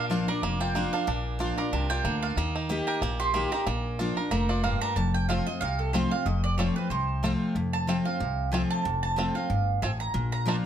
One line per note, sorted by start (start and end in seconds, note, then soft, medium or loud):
0.00 0.21 A#1 loud
0.00 0.40 A#2 medium
0.00 0.43 A#3 medium
0.00 0.40 D4 medium
0.00 0.10 F4 medium
0.10 0.27 F3 medium
0.10 0.28 A#3 medium
0.10 0.28 D4 medium
0.10 0.57 F4 medium
0.10 0.27 F4 loud
0.28 0.43 D4 soft
0.28 0.42 F4 medium
0.28 1.58 A#4 medium
0.28 0.58 D5 medium
0.43 0.86 F1 medium
0.43 1.05 F2 medium
0.43 0.75 A#3 medium
0.60 1.05 F4 medium
0.60 0.91 G5 loud
0.75 0.92 F3 medium
0.75 2.04 A#3 medium
0.75 0.93 A#3 medium
0.75 0.93 D4 loud
0.75 0.92 F4 loud
0.93 1.07 D4 medium
0.93 1.08 D4 medium
0.93 1.07 F4 medium
0.93 1.07 F5 loud
1.07 1.51 A#1 medium
1.07 1.69 A#2 loud
1.07 1.54 D4 medium
1.39 1.57 F3 medium
1.39 1.57 A#3 medium
1.39 1.57 D4 loud
1.39 1.87 F4 medium
1.39 1.56 F4 medium
1.57 1.73 D4 medium
1.57 1.71 F4 medium
1.57 2.87 A#4 medium
1.57 1.88 D5 medium
1.72 2.00 C2 medium
1.72 2.04 C3 medium
1.72 2.19 D4 medium
1.90 2.22 F4 medium
1.90 2.20 G5 loud
2.04 2.32 D2 loud
2.04 2.36 D3 medium
2.04 2.37 A#3 medium
2.22 2.37 F4 medium
2.22 2.36 F5 loud
2.37 2.80 D#2 loud
2.37 2.68 D#3 medium
2.37 3.02 A#3 medium
2.56 2.99 D#4 medium
2.69 3.00 D#3 medium
2.69 3.01 A#3 loud
2.69 3.01 D#4 medium
2.69 3.16 G4 medium
2.69 3.01 G4 loud
2.87 3.31 A#4 medium
2.87 3.17 G5 medium
3.01 3.45 A#1 medium
3.01 3.64 A#2 loud
3.01 3.33 A#3 medium
3.20 3.64 G4 medium
3.20 3.50 C6 loud
3.34 3.51 D#3 medium
3.34 3.65 A#3 medium
3.34 3.52 A#3 medium
3.34 3.52 D#4 medium
3.34 3.51 G4 loud
3.52 3.67 D#4 medium
3.52 3.66 G4 medium
3.52 3.61 A#5 loud
3.66 4.09 A#1 medium
3.66 4.29 A#2 medium
3.66 4.13 A#3 medium
3.99 4.16 F3 medium
3.99 4.17 A#3 medium
3.99 4.17 D4 loud
3.99 4.46 F4 medium
3.99 4.16 F4 medium
4.17 4.32 D4 soft
4.17 4.31 F4 medium
4.17 4.61 A#4 medium
4.31 4.74 F1 medium
4.31 4.63 A3 medium
4.31 4.62 A#3 medium
4.31 4.49 A#5 medium
4.49 4.93 F4 medium
4.49 4.63 D5 medium
4.64 4.95 G2 medium
4.64 4.96 A#3 medium
4.64 4.81 F5 medium
4.81 4.96 D4 medium
4.81 4.96 A#5 loud
4.96 5.39 F1 medium
4.96 5.59 F2 medium
4.96 5.14 A5 medium
5.14 5.28 G5 loud
5.29 5.46 F3 medium
5.29 5.46 A3 medium
5.29 5.37 C4 medium
5.29 5.47 C4 medium
5.29 5.32 F4 medium
5.29 5.46 F4 medium
5.29 5.46 F5 medium
5.47 5.62 C4 soft
5.47 5.61 F4 medium
5.47 5.61 D#5 loud
5.61 6.04 C2 medium
5.61 6.23 C3 medium
5.61 5.78 F5 loud
5.79 5.93 A4 medium
5.93 6.11 F3 medium
5.93 6.11 A3 loud
5.93 6.02 C4 medium
5.93 6.11 C4 loud
5.93 5.97 F4 medium
5.93 6.10 F4 loud
5.93 6.11 C5 medium
6.11 6.26 C4 soft
6.11 6.25 F4 medium
6.11 6.25 F5 medium
6.26 6.69 F1 loud
6.26 6.88 F2 medium
6.26 6.43 D#5 medium
6.44 6.57 D5 loud
6.58 6.75 F3 medium
6.58 6.76 A3 medium
6.58 6.67 C4 medium
6.58 6.76 C4 medium
6.58 6.62 F4 medium
6.58 6.75 F4 medium
6.58 6.76 C#5 medium
6.76 6.91 C4 soft
6.76 6.90 F4 medium
6.76 6.90 B4 medium
6.90 7.33 C2 medium
6.90 7.53 C3 medium
6.90 7.44 C5 medium
7.23 7.54 F3 medium
7.23 7.54 A3 medium
7.23 7.31 C4 medium
7.23 7.55 C4 loud
7.23 7.26 F4 medium
7.23 7.55 F4 loud
7.55 7.98 F1 medium
7.55 8.18 F2 medium
7.73 8.04 A5 loud
7.87 8.05 F3 medium
7.87 8.05 A3 medium
7.87 7.96 C4 medium
7.87 8.06 C4 loud
7.87 7.91 F4 medium
7.87 8.04 F4 medium
8.05 8.20 C4 soft
8.05 8.19 F4 medium
8.05 8.49 F5 medium
8.20 8.63 C2 medium
8.20 8.82 C3 medium
8.52 8.83 F3 medium
8.52 8.84 A3 medium
8.52 8.84 C4 medium
8.52 8.61 C4 medium
8.52 8.84 F4 loud
8.52 8.56 F4 medium
8.52 8.70 G#5 medium
8.71 9.01 A5 loud
8.85 9.28 F1 medium
8.85 9.47 F2 loud
9.03 9.33 A5 loud
9.16 9.34 F3 medium
9.16 9.35 A3 medium
9.16 9.35 C4 medium
9.16 9.26 C4 medium
9.16 9.34 F4 medium
9.16 9.21 F4 medium
9.35 9.50 C4 medium
9.35 9.49 F4 medium
9.35 9.79 F5 medium
9.50 9.77 G1 medium
9.50 9.81 G2 medium
9.82 10.10 A1 medium
9.82 10.13 A2 medium
9.82 9.91 C4 medium
9.82 9.86 F4 medium
9.82 10.00 G#5 medium
10.00 10.30 A#5 medium
10.14 10.57 A#1 medium
10.14 10.66 A#2 medium
10.32 10.62 A#5 loud
10.46 10.63 F3 medium
10.46 10.64 A#3 medium
10.46 10.55 A#3 medium
10.46 10.64 D4 medium
10.46 10.55 D4 medium
10.46 10.63 F4 medium
10.46 10.56 F4 medium